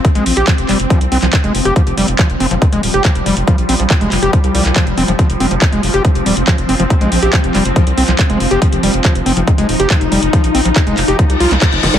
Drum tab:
HH |xxoxxxoxxxoxxxox|xxoxxxoxxxoxxxox|xxoxxxoxxxoxxxox|xxoxxxoxxxoxxxox|
CP |----x-x----xx---|----x-------x---|----x-x----xx---|----x-------x---|
SD |----------------|----------------|----------------|----------------|
BD |o---o---o---o---|o---o---o---o---|o---o---o---o---|o---o---o---o---|

HH |xxoxxxoxxxoxxxox|xxoxxxoxxxoxxxox|xxoxxxoxxxoxxxox|
CP |----x-x----xx---|----x-------x---|----x-x----xx---|
SD |----------------|----------------|--------------oo|
BD |o---o---o---o---|o---o---o---o---|o---o---o---o---|